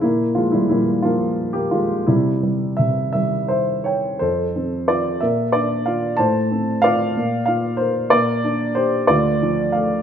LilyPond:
<<
  \new Staff \with { instrumentName = "Grand piano" } { \time 6/8 \key c \phrygian \tempo 4. = 61 e'8 f'16 e'16 e'8 f'8. g'16 f'8 | e'4 e''8 e''8 <c'' e''>8 <des'' g''>8 | \key f \major c''4 d''8 e''8 d''8 f''8 | a''4 f''4 f''8 c''8 |
d''4 c''8 d''4 f''8 | }
  \new Staff \with { instrumentName = "Grand piano" } { \clef bass \time 6/8 \key c \phrygian << { bes8 aes16 g16 g8 bes8. bes16 aes8 | g2 r4 | \key f \major a'4. bes'4. | c''4 d''4. r8 |
bes'4. f'4. | } \\ { bes,8 f8 bes,8 f4. | c8 g8 c8 g4. | f,8 c'8 f'8 bes,8 d'8 f'8 | a,8 c'8 f'8 bes,8 f'8 bes'8 |
bes,8 d'8 g'8 d,8 f8 a8 | } >> }
>>